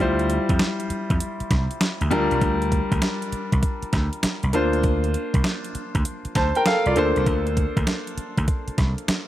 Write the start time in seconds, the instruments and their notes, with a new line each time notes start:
0.00 slap bass D2, grand piano G3 E4 F4 C5
0.19 closed hi-hat
0.30 closed hi-hat
0.49 slap bass F2, kick, closed hi-hat
0.59 snare, closed hi-hat
0.80 closed hi-hat
0.90 muted slap bass stroke, closed hi-hat
1.10 slap bass F2, kick, closed hi-hat
1.20 closed hi-hat
1.40 muted slap bass stroke, closed hi-hat
1.51 slap bass C2, kick, snare, closed hi-hat
1.71 closed hi-hat
1.81 snare, closed hi-hat
2.01 slap bass D2, closed hi-hat
2.11 grand piano G3 D4 F4 A#4, closed hi-hat
2.31 slap bass C2, closed hi-hat
2.41 slap bass D2, kick, closed hi-hat
2.62 closed hi-hat
2.72 kick, closed hi-hat
2.92 slap bass D2, kick, closed hi-hat
3.02 snare, closed hi-hat
3.22 closed hi-hat
3.32 muted slap bass stroke, closed hi-hat
3.52 slap bass C2, kick, closed hi-hat
3.63 kick, closed hi-hat
3.82 muted slap bass stroke, closed hi-hat
3.93 slap bass D2, kick, snare, closed hi-hat
4.13 closed hi-hat
4.23 muted slap bass stroke, snare, closed hi-hat
4.43 slap bass C2, closed hi-hat
4.53 slap bass D2, grand piano A#3 D4 F4 C5, closed hi-hat
4.73 closed hi-hat
4.84 kick, closed hi-hat
5.04 closed hi-hat
5.14 closed hi-hat
5.34 slap bass C2, kick, closed hi-hat
5.44 snare, closed hi-hat
5.64 closed hi-hat
5.75 muted slap bass stroke, closed hi-hat
5.95 slap bass D2, kick, closed hi-hat
6.05 closed hi-hat
6.25 muted slap bass stroke, closed hi-hat
6.35 slap bass D2, grand piano C5 A5, kick, snare, closed hi-hat
6.55 grand piano A#4 G5, closed hi-hat
6.66 grand piano A4 F5, snare, closed hi-hat
6.86 slap bass C2, grand piano F4 D5, closed hi-hat
6.96 slap bass D2, grand piano A#3 D4 A4 C5, closed hi-hat
7.16 slap bass C2, closed hi-hat
7.26 slap bass D2, kick, closed hi-hat
7.47 closed hi-hat
7.57 kick, closed hi-hat
7.77 slap bass D2, kick, closed hi-hat
7.87 snare, closed hi-hat
8.07 closed hi-hat
8.18 muted slap bass stroke, closed hi-hat
8.37 slap bass D2, kick, closed hi-hat
8.48 kick, closed hi-hat
8.68 muted slap bass stroke, closed hi-hat
8.78 slap bass C2, kick, snare, closed hi-hat
8.98 closed hi-hat
9.08 muted slap bass stroke, snare, closed hi-hat